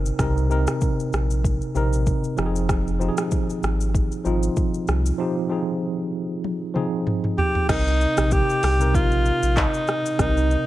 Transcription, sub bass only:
0.00 0.12 G1 medium
0.19 0.67 C2 loud
1.13 1.61 A#1 loud
1.75 2.12 A#1 loud
2.38 3.10 F1 loud
3.63 4.11 G#1 loud
4.25 4.49 G#1 medium
4.88 5.12 C2 medium
7.69 8.06 C2 loud
8.18 8.42 A#1 medium
8.63 8.96 C2 medium
8.94 9.31 A#1 loud
9.43 9.67 A#1 medium
10.19 10.56 C2 loud

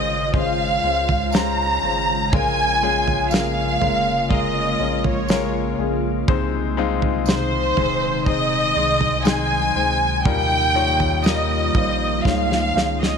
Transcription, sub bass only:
0.00 0.80 G#1 medium
0.83 1.79 C#2 medium
1.83 2.35 G#1 medium
2.33 3.78 A#1 loud
3.81 4.76 F1 medium
4.80 5.75 A#1 medium
5.78 6.25 A#1 medium
6.28 7.73 C2 loud
7.77 8.72 D#1 medium
8.75 9.71 C2 medium
9.75 10.27 C#2 loud
10.25 11.71 D#2 loud
11.75 12.21 A#1 loud
12.25 12.72 C#2 loud
12.75 13.18 C#2 medium

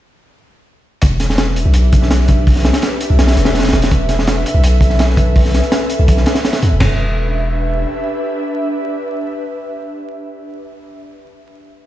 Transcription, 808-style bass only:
1.03 1.64 E1 loud
1.66 2.73 B1 loud
3.10 3.36 B1 loud
3.37 3.72 E1 medium
3.73 4.44 E1 loud
4.54 5.62 B1 loud
5.99 6.25 B1 loud
6.63 6.73 E2 medium
6.72 6.80 E1 medium
6.81 7.85 E1 medium

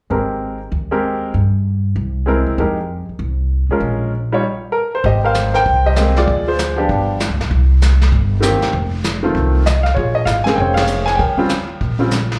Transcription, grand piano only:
0.10 0.57 G#3 soft
0.10 0.57 C4 soft
0.10 0.57 G4 soft
0.10 0.58 A#4 medium
0.91 1.31 G#3 medium
0.91 1.32 C4 medium
0.91 1.32 G4 medium
0.91 1.32 A#4 medium
2.26 2.57 G#3 medium
2.26 2.58 C4 medium
2.26 2.58 E4 medium
2.26 2.58 A#4 medium
2.59 2.76 G#3 medium
2.59 2.76 D#4 soft
2.59 2.76 G4 soft
2.59 2.76 A#4 medium
3.71 4.10 G#3 medium
3.71 4.10 C#4 medium
3.71 4.11 F4 medium
3.71 4.11 A#4 medium
4.32 4.42 G3 medium
4.32 4.42 D#4 medium
4.32 4.42 F4 medium
4.32 4.43 C#5 medium
4.72 4.91 A#4 medium
4.95 5.04 C5 medium
5.05 5.62 G4 medium
5.05 5.24 C5 soft
5.05 5.23 D#5 medium
5.24 5.52 A#4 medium
5.24 5.52 C5 medium
5.24 5.56 F5 medium
5.54 6.12 A#4 medium
5.54 5.85 C5 medium
5.54 5.86 G5 loud
5.86 5.95 G4 medium
5.86 6.25 C5 medium
5.86 6.17 D#5 medium
5.96 6.28 G#3 medium
5.96 6.28 A#3 medium
5.96 6.28 C4 medium
5.96 6.27 G4 medium
6.17 6.46 F4 medium
6.17 6.46 G#4 medium
6.17 6.49 D5 medium
6.48 6.86 F4 medium
6.48 6.86 G#4 medium
6.48 6.76 C5 medium
6.76 7.17 F3 medium
6.76 7.17 B3 medium
6.76 7.17 D4 medium
6.76 7.18 G4 medium
8.40 8.72 D#3 medium
8.40 8.73 A#3 medium
8.40 8.73 C4 medium
8.40 8.73 G4 medium
9.23 9.63 D#3 medium
9.23 9.63 A3 medium
9.23 9.64 C4 medium
9.23 9.64 F4 medium
9.66 9.86 D#5 medium
9.83 9.88 F5 medium
9.95 10.55 F4 soft
9.95 10.46 G#4 soft
9.95 10.16 C#5 medium
10.15 10.27 D#5 medium
10.25 10.46 F5 medium
10.44 10.86 C#3 medium
10.44 10.86 A#3 medium
10.44 10.87 C4 medium
10.44 10.77 G#4 medium
10.44 10.56 G#5 medium
10.55 10.77 G5 medium
10.60 11.17 C5 medium
10.60 10.78 C#5 medium
10.74 11.04 F5 medium
10.79 11.17 G#4 medium
10.79 11.17 C#5 medium
11.06 11.19 G#5 medium
11.15 11.77 A#4 soft
11.15 11.75 G5 medium
11.19 11.77 C#5 soft
11.38 11.48 C#3 medium
11.38 11.49 G3 medium
11.38 11.49 C4 medium
11.38 11.49 F4 medium
11.99 12.10 C#3 medium
11.99 12.10 G3 medium
11.99 12.10 C4 medium
11.99 12.11 F4 medium

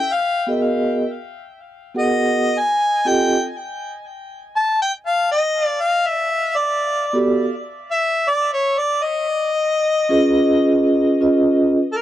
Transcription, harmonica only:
0.00 0.15 G5 loud
0.13 0.49 F5 medium
1.98 2.60 D#5 medium
2.59 3.10 G#5 loud
3.08 3.44 G5 medium
4.56 4.78 A5 loud
4.82 4.92 G5 medium
5.06 5.28 F5 medium
5.31 5.64 D#5 loud
5.64 5.82 D5 loud
5.81 6.08 F5 loud
6.07 6.58 E5 medium
6.56 7.28 D5 medium
7.91 8.30 E5 loud
8.29 8.51 D5 loud
8.53 8.80 C#5 medium
8.78 9.04 D5 medium
9.03 10.86 D#5 medium
11.92 11.98 A4 medium
11.97 12.02 A#4 medium

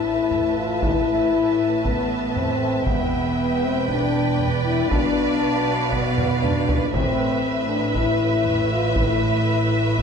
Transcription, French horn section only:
0.00 0.57 E4 medium
0.56 0.82 F4 medium
0.83 1.85 E4 loud
1.83 2.34 B3 medium
2.35 2.86 C4 medium
2.86 3.62 B3 loud
3.64 3.89 C4 medium
3.89 4.47 D4 medium
4.64 4.89 E4 medium
4.89 5.91 D4 loud
5.91 6.42 B3 medium
6.42 6.93 D4 medium
6.93 7.67 C4 loud
7.67 7.94 D4 medium
7.95 8.71 E4 loud
8.71 8.96 F4 medium
8.94 9.97 E4 loud
9.97 10.02 B3 medium

